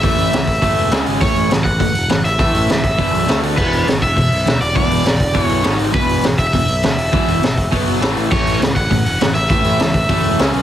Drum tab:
CC |--------|--------|--------|x-------|
HH |oooooooo|oooooooo|oooooooo|-ooooooo|
SD |--o---o-|--o---o-|--o---o-|--o---o-|
BD |o--oo---|o--oo---|o--oo---|o--oo---|

CC |--------|--------|--------|x-------|
HH |oooooooo|oooooooo|oooooooo|-ooooooo|
SD |--o---o-|--o---o-|--o---o-|--o---o-|
BD |o--oo---|o--oo---|o--oo---|o--oo---|

CC |--------|
HH |oooooooo|
SD |--o---o-|
BD |o--oo---|